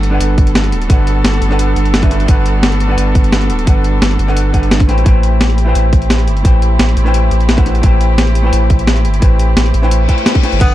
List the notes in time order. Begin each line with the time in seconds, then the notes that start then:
Already playing: G1 B3 D4 F#4 A4 B4 F#5
0.03 closed hi-hat
0.10 G3 D4 A4 B4
0.14 F#5
0.20 G1, closed hi-hat
0.38 kick, closed hi-hat
0.47 closed hi-hat
0.55 snare, closed hi-hat
0.64 closed hi-hat
0.72 D1, closed hi-hat
0.82 closed hi-hat
0.88 G1 G3 D4 A4 B4, kick, closed hi-hat
0.92 F#5
1.07 closed hi-hat
1.24 G1, snare, closed hi-hat
1.33 closed hi-hat
1.41 G1, closed hi-hat
1.49 G3 D4 A4 B4, snare
1.53 F#5
1.59 closed hi-hat
1.76 G1, closed hi-hat
1.85 closed hi-hat
1.94 snare, closed hi-hat
2.02 G3 D4 A4 B4 E5, kick, snare, closed hi-hat
2.11 snare, closed hi-hat
2.20 closed hi-hat
2.26 G1 G3 D4 A4 B4, kick, closed hi-hat
2.31 F#5
2.46 closed hi-hat
2.63 snare, closed hi-hat
2.72 closed hi-hat
2.80 closed hi-hat
2.87 G3 D4 A4 B4
2.92 F#5
2.97 G1, closed hi-hat
3.15 kick, closed hi-hat
3.24 closed hi-hat
3.32 snare, closed hi-hat
3.42 closed hi-hat
3.50 D1, closed hi-hat
3.59 closed hi-hat
3.65 G1 G3 D4 A4 B4, kick, closed hi-hat
3.69 F#5
3.84 closed hi-hat
4.02 G1, snare, closed hi-hat
4.11 closed hi-hat
4.19 G1, closed hi-hat
4.27 G3 D4 A4 B4 F#5, snare
4.37 closed hi-hat
4.53 G1 G3 D4 A4 B4 F#5, kick, closed hi-hat
4.63 closed hi-hat
4.71 snare, closed hi-hat
4.80 kick, snare, closed hi-hat
4.88 A1 A3 C4 E4 G4 B4 C5 G5, snare, closed hi-hat
4.98 closed hi-hat
5.04 A1 A3 E4 B4 C5, kick, closed hi-hat
5.08 G5
5.23 closed hi-hat
5.41 snare, closed hi-hat
5.50 closed hi-hat
5.58 closed hi-hat
5.65 A3 E4 B4 C5
5.69 G5
5.75 A1, closed hi-hat
5.93 kick, closed hi-hat
6.02 closed hi-hat
6.10 snare, closed hi-hat
6.19 closed hi-hat
6.28 G1, closed hi-hat
6.37 closed hi-hat
6.43 A1 A3 E4 B4 C5, kick, closed hi-hat
6.47 G5
6.62 closed hi-hat
6.79 A1, snare, closed hi-hat
6.89 closed hi-hat
6.97 A1, closed hi-hat
7.03 A3 E4 B4 C5, snare
7.08 G5
7.14 closed hi-hat
7.31 A1, closed hi-hat
7.41 closed hi-hat
7.49 snare, closed hi-hat
7.57 A3 E4 B4 C5 F#5, kick, snare, closed hi-hat
7.66 snare, closed hi-hat
7.75 closed hi-hat
7.81 A1 A3 E4 B4 C5, kick, closed hi-hat
7.86 G5
8.01 closed hi-hat
8.18 snare, closed hi-hat
8.27 closed hi-hat
8.35 closed hi-hat
8.42 A3 E4 B4 C5
8.47 G5
8.53 A1, closed hi-hat
8.70 kick, closed hi-hat
8.79 closed hi-hat
8.87 snare, closed hi-hat
8.96 closed hi-hat
9.05 G1, closed hi-hat
9.14 closed hi-hat
9.20 A1 A3 E4 B4 C5, kick, closed hi-hat
9.24 G5
9.39 closed hi-hat
9.57 A1, snare, closed hi-hat
9.66 closed hi-hat
9.74 A1, closed hi-hat
9.82 A3 E4 B4 C5 G5, snare
9.91 closed hi-hat, reverse cymbal
10.08 A3 E4 B4 C5 G5, kick, closed hi-hat
10.18 closed hi-hat
10.26 snare, closed hi-hat
10.35 kick, snare, closed hi-hat
10.42 A3 E4 B4 C5 G5, snare, closed hi-hat
10.52 G1, closed hi-hat
10.59 G1 G3 A3 B3 D4 A4 B4 F#5, kick, closed hi-hat, crash
10.63 F#5